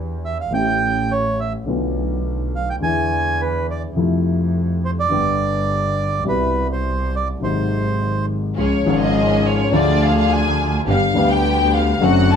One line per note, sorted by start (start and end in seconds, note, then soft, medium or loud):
0.00 0.46 E2 medium
0.00 0.47 E2 soft
0.00 0.46 E3 soft
0.00 0.46 B3 soft
0.00 0.47 D4 soft
0.00 0.47 G4 soft
0.25 0.38 E5 medium
0.41 0.53 F5 medium
0.51 1.61 A1 medium
0.51 1.62 A1 soft
0.51 1.62 A2 soft
0.51 1.61 E3 soft
0.51 1.61 A3 soft
0.51 1.62 C#4 soft
0.51 1.63 G4 soft
0.51 1.12 G5 medium
1.12 1.40 C#5 medium
1.40 1.53 E5 soft
1.66 2.76 B1 medium
1.66 2.76 B1 soft
1.66 2.76 B2 soft
1.66 2.75 D3 soft
1.66 2.76 A3 soft
1.66 2.76 B3 soft
1.66 2.77 F4 soft
2.56 2.69 F5 medium
2.70 2.76 G5 medium
2.80 3.91 E2 medium
2.80 3.91 E2 soft
2.80 3.90 D3 soft
2.80 3.91 E3 soft
2.80 3.90 G#3 soft
2.80 3.91 B3 soft
2.80 3.41 G#5 medium
2.85 3.92 E4 soft
3.41 3.67 B4 medium
3.70 3.83 D5 medium
3.95 5.05 F2 medium
3.95 5.06 F2 soft
3.95 5.05 C3 soft
3.95 5.05 F3 soft
3.95 5.06 A3 soft
3.95 5.06 E4 soft
4.85 4.91 C5 medium
5.00 6.24 D5 medium
5.09 6.20 G1 soft
5.09 6.20 G1 medium
5.09 6.20 G2 soft
5.09 6.19 D3 soft
5.09 6.20 G3 soft
5.09 6.21 B3 soft
5.09 6.21 G4 medium
6.24 7.36 C2 soft
6.24 7.36 C2 medium
6.24 7.36 B2 soft
6.24 7.36 C3 soft
6.24 7.35 G3 soft
6.24 7.37 E4 soft
6.28 6.68 B4 medium
6.72 7.15 C5 medium
7.16 7.28 D5 medium
7.40 8.52 G#1 medium
7.40 8.52 G#1 soft
7.40 8.52 G#2 soft
7.40 8.51 C3 soft
7.40 8.52 F#3 soft
7.40 8.52 G#3 soft
7.40 8.26 C5 medium
7.44 8.53 D#4 soft
8.56 8.82 C#2 medium
8.56 8.82 C#2 soft
8.56 8.82 C#3 soft
8.56 8.82 F3 soft
8.56 8.82 G#3 soft
8.56 8.81 C#4 soft
8.56 8.81 F4 soft
8.56 8.82 F4 soft
8.56 8.81 G#4 soft
8.56 8.99 C#5 medium
8.85 9.68 G#1 medium
8.85 9.69 G#1 medium
8.85 9.69 G#2 medium
8.85 9.68 C#3 medium
8.85 9.68 F3 medium
8.85 9.69 G#3 medium
8.85 9.68 C#4 medium
8.85 9.68 F4 medium
8.85 9.68 G#4 medium
8.89 9.70 F4 medium
9.03 9.45 D#5 medium
9.47 9.74 C#5 medium
9.71 10.82 D2 medium
9.71 10.82 D3 medium
9.71 10.82 F3 medium
9.71 10.82 G#3 medium
9.71 10.81 D4 medium
9.71 10.81 F4 medium
9.71 10.83 F4 medium
9.71 10.81 G#4 medium
9.75 10.03 D5 medium
10.03 10.16 F5 medium
10.17 10.30 F5 medium
10.31 10.74 G#5 medium
10.87 11.11 G1 medium
10.87 11.12 G1 soft
10.87 11.12 G2 soft
10.87 11.11 D3 soft
10.87 11.11 G3 soft
10.87 11.11 B3 soft
10.87 11.12 B3 soft
10.87 11.11 D4 soft
10.87 11.12 G4 soft
10.87 11.29 F5 medium
11.14 11.97 D2 medium
11.14 11.98 D2 medium
11.14 11.98 D3 medium
11.14 11.98 G3 medium
11.14 11.97 B3 medium
11.14 11.98 B3 medium
11.14 11.98 D4 medium
11.14 11.98 G4 medium
11.18 11.99 G4 medium
11.32 11.74 G5 medium
11.74 12.03 F5 medium
12.00 12.36 F#1 medium
12.00 12.36 F#2 medium
12.00 12.36 D3 medium
12.00 12.36 F#3 medium
12.00 12.36 A3 medium
12.00 12.36 C4 medium
12.00 12.36 D4 medium
12.00 12.36 F#4 medium
12.00 12.32 F#5 medium
12.04 12.36 F#4 medium
12.32 12.36 A5 medium